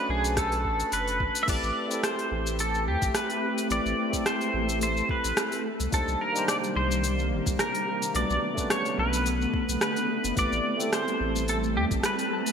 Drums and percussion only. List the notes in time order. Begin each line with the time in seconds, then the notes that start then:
0.24 open hi-hat, shaker
0.37 kick, cross-stick, open hi-hat, shaker
0.52 open hi-hat, shaker
0.65 kick
0.80 open hi-hat, shaker
0.92 open hi-hat, shaker
1.08 open hi-hat, shaker
1.20 kick
1.35 open hi-hat, shaker
1.48 kick, open hi-hat, crash, shaker
1.63 shaker
1.91 open hi-hat, shaker
2.03 cross-stick, open hi-hat, shaker
2.19 open hi-hat, shaker
2.47 shaker
2.59 open hi-hat, shaker
2.74 shaker
3.02 kick, open hi-hat, shaker
3.15 cross-stick, open hi-hat, shaker
3.30 open hi-hat, shaker
3.58 open hi-hat, shaker
3.70 open hi-hat, shaker
3.86 shaker
4.13 kick, open hi-hat, shaker
4.26 cross-stick, open hi-hat, shaker
4.41 open hi-hat, shaker
4.69 open hi-hat, shaker
4.81 open hi-hat, shaker
4.97 shaker
5.09 kick
5.24 open hi-hat, shaker
5.37 cross-stick, open hi-hat, shaker
5.52 open hi-hat, shaker
5.80 open hi-hat, shaker
5.92 kick, open hi-hat, shaker
6.08 shaker
6.36 open hi-hat, shaker
6.48 cross-stick, open hi-hat, shaker
6.64 open hi-hat, shaker
6.91 shaker
7.04 open hi-hat, shaker
7.19 shaker
7.46 kick, open hi-hat, shaker
7.59 cross-stick, open hi-hat, shaker
7.75 open hi-hat, shaker
8.02 open hi-hat, shaker
8.15 open hi-hat, shaker
8.30 shaker
8.58 kick, open hi-hat, shaker
8.70 cross-stick, open hi-hat, shaker
8.85 open hi-hat, shaker
9.13 open hi-hat, shaker
9.26 open hi-hat, shaker
9.41 shaker
9.54 kick
9.69 open hi-hat, shaker
9.81 cross-stick, open hi-hat, shaker
9.96 open hi-hat, shaker
10.24 open hi-hat, shaker
10.37 kick, open hi-hat, shaker
10.52 shaker
10.80 open hi-hat, shaker
10.93 cross-stick, open hi-hat, shaker
11.08 open hi-hat, shaker
11.36 shaker
11.48 open hi-hat, shaker
11.64 shaker
11.91 kick, open hi-hat, shaker
12.03 cross-stick, open hi-hat, shaker
12.19 open hi-hat, shaker
12.46 open hi-hat, shaker